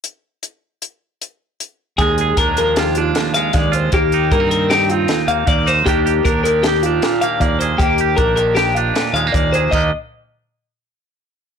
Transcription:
<<
  \new Staff \with { instrumentName = "Clean electric guitar" } { \time 5/4 \key ees \major \tempo 4 = 155 r1 r4 | aes'4 bes'8 bes'8 g'8 f'4 f''8 d''8 c''8 | g'4 bes'8 bes'8 g'8 f'4 f''8 d''8 c''8 | g'4 bes'8 bes'8 g'8 f'4 f''8 d''8 c''8 |
g'4 bes'8 bes'8 g'8 f'4 f''8 d''8 c''8 | ees''8 r1 r8 | }
  \new Staff \with { instrumentName = "Clean electric guitar" } { \time 5/4 \key ees \major << { r1 r4 | aes8 aes'8 d'4 f'8 d'4 aes8 aes8 f'8 | bes8 ees'8 bes16 c'8. ees'8 c'4 bes8 bes8 ees'8 | <ees bes d' g'>8 g'8 d'4 g'8 d'4 bes8 bes8 aes'8 |
bes8 g'8 d'4 g'8 d'4 aes16 bes16 bes8 aes'8 | <ees bes d' g'>8 r1 r8 | } \\ { r1 r4 | ees,4. f4. ees,4 ees,4 | ees,4. ees4. ees,4 ees,4 | ees,4. ees4. bes,4 ees,4 |
ees,4. ees4. bes,4 ees,4 | ees,8 r1 r8 | } >> }
  \new Staff \with { instrumentName = "Fingered electric bass" } { \clef bass \time 5/4 \key ees \major r1 r4 | ees,4 ees,2 r4 ees,4 | ees,4 g,2 r8 ees,8 ees,4 | ees,4 ees,2 r4 ees,4 |
ees,4 bes,,2 r8 ees,8 ees,4 | ees,8 r1 r8 | }
  \new DrumStaff \with { instrumentName = "Drums" } \drummode { \time 5/4 hh4 hh4 hh4 hh4 hh4 | <hh bd>8 hh8 <hh bd>8 hh8 <hh sn>8 hh8 <hh sn>8 hh8 <hh bd sn>8 hh8 | <hh bd>8 hh8 <hh bd>8 hh8 <hh sn>8 hh8 <hh sn>8 hh8 <hh bd>8 hh8 | <hh bd>8 hh8 <hh bd>8 hh8 <hh sn>8 hh8 <hh sn>8 hh8 <hh bd>8 hh8 |
<hh bd>8 hh8 <hh bd>8 hh8 <hh sn>8 hh8 <hh sn>8 hh8 <hh bd>8 hh8 | <cymc bd>4 r4 r4 r4 r4 | }
>>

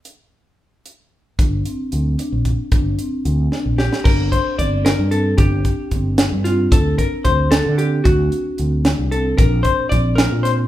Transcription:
<<
  \new Staff \with { instrumentName = "Hollow-body jazz guitar" } { \time 5/8 \key g \minor \tempo 4 = 112 r2 r8 | r2 r8 | r2 g'8 | bes'8 c''8 d''8 bes'8 a'8 |
g'2 f'8 | a'8 bes'8 c''8 a'8 g'8 | fis'2 a'8 | bes'8 c''8 d''8 bes'8 c''8 | }
  \new Staff \with { instrumentName = "Marimba" } { \time 5/8 \key g \minor r2 r8 | d'8 c'8 c'8 d'4 | d'8 c'8 c'8 d'4 | d'4 c'8 d'8 c'8 |
d'4 c'8 d'8 c'8 | d'4 c'8 d'8 c'8 | d'4 c'8 d'8 c'8 | d'4 c'8 d'8 c'8 | }
  \new Staff \with { instrumentName = "Fretless electric bass" } { \clef bass \time 5/8 \key g \minor r2 r8 | g,,8 r8 d,8 r16 bes,,8 r16 | g,,8 r8 d,8 r16 bes,,8 r16 | g,,8 r8 g,,8. g,8. |
g,,8 r8 g,,8. g,8. | d,8 r8 d,8. d8. | d,8 r8 d,8. c,8. | bes,,8 r8 bes,,8. bes,8. | }
  \new DrumStaff \with { instrumentName = "Drums" } \drummode { \time 5/8 hh4. hh4 | <hh bd>8 hh8 hh8 hh8 <hh bd>8 | <hh bd>8 hh8 hh8 sn8 sn16 sn16 | <cymc bd>8 <hh bd>8 <hh bd>8 <hh sn>8 hh8 |
<hh bd>8 <hh bd>8 <hh bd>8 <hh sn>8 <hh sn>8 | <hh bd>8 <hh bd>8 <hh bd>8 <hh sn>8 hh8 | <hh bd>8 hh8 hh8 <hh sn>8 hh8 | <hh bd>8 <hh bd>8 <hh bd sn>8 <hh sn>8 <hh sn>8 | }
>>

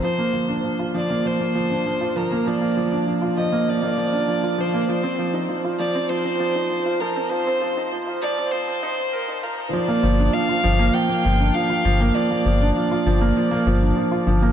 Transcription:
<<
  \new Staff \with { instrumentName = "Violin" } { \time 4/4 \key f \mixolydian \tempo 4 = 99 c''4 r8 d''8 c''4. bes'8 | d''4 r8 ees''8 d''4. c''8 | c''4 r8 d''8 c''4. bes'8 | c''4 r8 d''8 c''4. bes'8 |
d''4 f''4 g''4 f''4 | d''4 d''2~ d''8 r8 | }
  \new Staff \with { instrumentName = "Felt piano" } { \time 4/4 \key f \mixolydian f16 bes16 f16 d'16 f16 f'16 f16 bes16 f16 bes16 f16 d'16 f16 f'16 f16 bes16 | f16 bes16 f16 d'16 f16 f'16 f16 bes16 f16 bes16 f16 d'16 f16 f'16 f16 bes16 | f16 c'16 f16 ees'16 f16 f'16 f16 c'16 f16 c'16 f16 ees'16 f16 f'16 f16 c'16 | f16 c'16 f16 ees'16 f16 f'16 f16 c'16 f16 c'16 ees'16 c'16 bes'16 ees'16 f'16 c''16 |
f16 bes16 f16 d'16 f16 f'16 f16 bes16 f16 bes16 f16 d'16 f16 f'16 f16 bes16 | f16 bes16 f16 d'16 f16 f'16 f16 bes16 f16 bes16 f16 d'16 f16 f'16 f16 bes16 | }
  \new Staff \with { instrumentName = "Analog synth bass" } { \clef bass \time 4/4 \key f \mixolydian r8 g,,8 r8 g,,8 r8 g,,8 r8 g,,8 | r8 g,,8 r8 g,,8 r8 g,,8 r8 g,,8 | r8 f,,8 r8 f,,8 r8 f,,8 r8 f,,8 | r8 f,,8 r8 f,,8 r8 f,,8 r8 f,,8 |
r8 g,,8 r8 g,,8 r8 g,,8 r8 g,,8 | r8 g,,8 r8 g,,8 r8 g,,8 r8 g,,8 | }
>>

